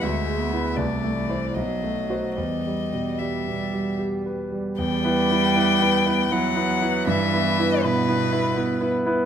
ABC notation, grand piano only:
X:1
M:3/4
L:1/8
Q:1/4=79
K:Em
V:1 name="Grand piano"
(3D,, ^G, [EB] (3C,, A, [Ec] (3B,,, A, [Fc] | (3E,, G, B,, (3G, B,, G, (3G B G, | (3E,, [B,EB] [B,EB] (3[B,EB] [B,EB] [B,EB] (3[B,EB] [B,EB] [B,EB] | (3G,, [B,EB] [B,EB] (3[B,EB] [B,EB] [B,EB] (3[B,EB] [B,EB] [B,EB] |]